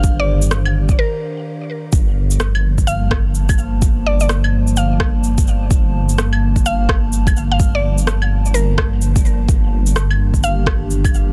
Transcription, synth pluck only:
X:1
M:4/4
L:1/16
Q:"Swing 16ths" 1/4=127
K:Gm
V:1 name="Synth pluck"
f d2 z4 z B6 z2 | z8 f2 z6 | z2 d d z4 f4 z4 | z8 f2 z4 z f- |
f d2 z4 z B6 z2 | z8 f2 z6 |]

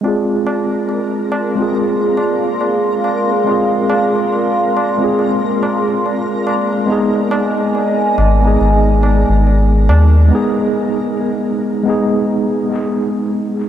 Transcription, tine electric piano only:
X:1
M:4/4
L:1/16
Q:"Swing 16ths" 1/4=70
K:Fm
V:1 name="Tine electric piano"
[A,CFA]6- [A,CFA] [A,CFA]8- [A,CFA] | [A,CFA]6- [A,CFA] [A,CFA]8- [A,CFA] | [A,_CEA]6- [A,CEA] [A,CEA]8- [A,CEA] | [A,_CEA]6- [A,CEA] [A,CEA]8- [A,CEA] |]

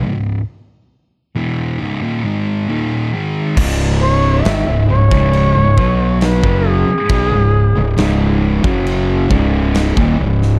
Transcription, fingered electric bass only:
X:1
M:4/4
L:1/16
Q:1/4=68
K:C#m
V:1 name="Fingered electric bass" clef=bass
z16 | C,,,4 G,,, C,,, C,,, C,,,2 C,,, B,,,3 F,,,2 z | B,,, C,,,2 C,,, C,,,3 F,,,3 C,,,3 D,,, C,,,2 |]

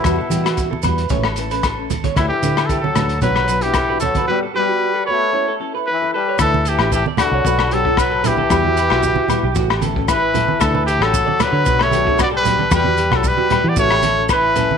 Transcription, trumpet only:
X:1
M:4/4
L:1/16
Q:"Swing 16ths" 1/4=114
K:D
V:1 name="Trumpet"
E6 z8 z2 | E G3 A A3 B3 G3 A2 | B2 B4 c4 z2 B2 B2 | A2 G2 G2 F4 A2 B2 G2- |
G8- G2 z2 B4 | A2 G A3 B3 c3 d B3 | B3 A B3 d c4 B4 |]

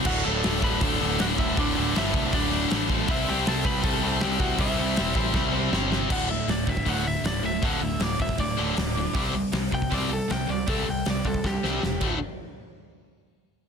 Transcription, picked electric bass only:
X:1
M:4/4
L:1/8
Q:1/4=158
K:Dmix
V:1 name="Picked electric bass" clef=bass
D,,, D,,, D,,, D,,, D,,, D,,, D,,, D,,, | D,,, D,,, G,,, C,, D,,,2 A,,,2 | C,, C,, C,, C,, C,, C,, C,, C,, | C,, C,, E,,, A,,, C,,2 G,,,2 |
z2 D,,, D,,, D,,,2 D,,, D,,, | D,,, D,,, D,,, D,,, D,,, D,,, D,,,2 | C,,2 C,, C,, C,,2 C,, C,, | C,, C,, C,, C,, C,, C,, E,,, D,,, |
z8 |]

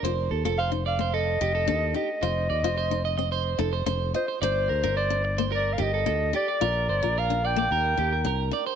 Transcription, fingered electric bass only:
X:1
M:4/4
L:1/16
Q:1/4=109
K:Fmix
V:1 name="Fingered electric bass" clef=bass
F,,,2 E,, F,,,6- F,,, F,,,2 E,,2 z2 | F,,,2 E,, F,,,6- F,,, F,,,2 F,,,2 z2 | G,,,2 D,, G,,,6- G,,, G,,,2 D,,2 z2 | B,,,2 G,,, B,,,4- B,,, E,,2 E,,2 C,,2 z2 |]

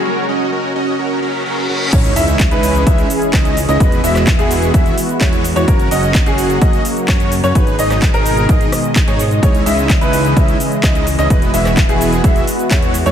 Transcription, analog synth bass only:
X:1
M:4/4
L:1/16
Q:1/4=128
K:C#dor
V:1 name="Analog synth bass" clef=bass
z16 | C,,2 C,,3 C,,3 C,,2 z2 C,,3 C,, | E,,,2 E,,,3 E,,,3 E,,,2 z2 E,,3 E,, | F,,,2 F,,,3 F,,,3 F,,,2 z2 F,,3 F,, |
G,,,2 G,,,3 G,,,3 G,,,2 z3 G,,3 | C,,2 C,,3 C,,3 C,,2 z2 C,,3 C,, | E,,,2 E,,,3 E,,,3 E,,,2 z2 E,,3 E,, |]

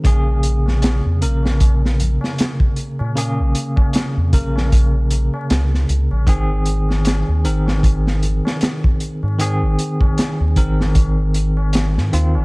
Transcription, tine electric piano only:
X:1
M:4/4
L:1/16
Q:"Swing 16ths" 1/4=77
K:Abmix
V:1 name="Tine electric piano"
[D,B,A]6 [D,B,B] z8 z | [D,B,A]6 [D,B,B] z8 z | [E,CA]6 [E,CB] z8 z | [E,CA]6 [E,CB] z6 z [E,CF]2 |]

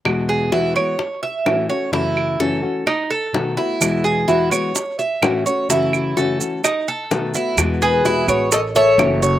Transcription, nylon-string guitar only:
X:1
M:4/4
L:1/8
Q:1/4=128
K:E
V:1 name="Nylon-string guitar"
[E,,B,,E,G,B,F]2 [E,,B,,E,G,B,F] [E,G,B,F] z2 [A,,E,A,CF] [A,CF] | [F,,C,E,A,CF]2 [F,,C,E,A,CF] [E,A,CF] z2 [B,,D,A,B,F] [A,B,F] | [E,,B,,E,G,B,F]2 [E,,B,,E,G,B,F] [E,G,B,F] z2 [A,,E,A,CF] [A,CF] | [F,,C,E,A,CF]2 [F,,C,E,A,CF] [E,A,CF] z2 [B,,D,A,B,F] [A,B,F] |
[B,,E,G,B,F]2 [B,,E,G,B,F] [G,B,F] z2 [E,A,CF] [A,CF] |]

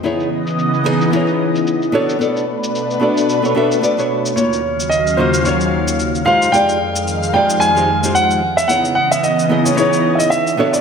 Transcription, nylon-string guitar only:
X:1
M:4/4
L:1/16
Q:"Swing 16ths" 1/4=111
K:Db
V:1 name="Nylon-string guitar"
[_CE_FAd]2 z4 [CEFAe]2 [CEFAd]6 [=B,=D^F=A^c]2 | [=B,=D^F=A=d]2 z4 [B,DFAd]3 [B,DFA^c] [B,DFA_f]2 [B,D^FAd] [B,DFAc]3 | [B,EFGd]2 z4 [B,EFGe]2 [B,EFGd]6 [A,EF=Gc]2 | [A,EF=G=d]2 z4 [A,EFGd]3 [A,EFGc] z [A,EFGc]3 z2 |
[_CE_FAd]2 z4 [CEFAe]2 [CEFAd]6 [=B,=D^F=A^c]2 |]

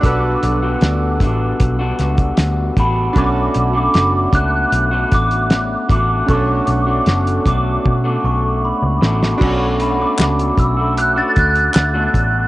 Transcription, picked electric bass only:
X:1
M:4/4
L:1/16
Q:1/4=77
K:Bm
V:1 name="Picked electric bass" clef=bass
B,,,2 B,,,2 D,,2 A,,,2 B,,,2 C,,2 D,,2 A,,,2 | B,,,2 B,,,2 F,,,2 C,,2 B,,,2 A,,,4 A,,,2 | B,,,2 B,,,2 F,,,2 B,,,2 B,,2 B,,,3 C,, A,,,2 | B,,,4 C,,2 B,,,4 D,,2 D,,2 A,,,2 |]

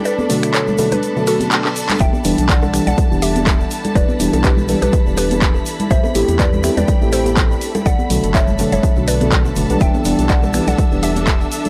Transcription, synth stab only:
X:1
M:4/4
L:1/16
Q:"Swing 16ths" 1/4=123
K:Em
V:1 name="Synth stab" clef=bass
z2 [B,,D,F,A,]4 [B,,D,F,A,] z2 [B,,D,F,A,]6- [B,,D,F,A,] | z2 [E,G,B,D]4 [E,G,B,D] z2 [E,G,B,D]6- [E,G,B,D]- | [E,G,B,D]2 [E,G,B,D]4 [E,G,B,D] z2 [E,G,B,D]6- [E,G,B,D] | z2 [A,CEG]4 [A,CEG] z2 [A,CEG]6- [A,CEG] |
z2 [B,,D,F,A,]4 [B,,D,F,A,] z2 [B,,D,F,A,]2 [B,,D,F,A,]3 [B,,D,F,A,] [E,G,B,D]- | [E,G,B,D]2 [E,G,B,D]4 [E,G,B,D] z2 [E,G,B,D]6- [E,G,B,D] |]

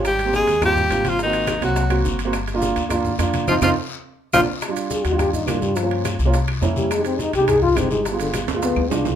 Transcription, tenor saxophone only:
X:1
M:4/4
L:1/8
Q:1/4=210
K:Gphr
V:1 name="Tenor saxophone"
G2 A2 G3 F | E3 _G3 z2 | z8 | F F z4 F z |
z8 | z8 | z8 | z8 |]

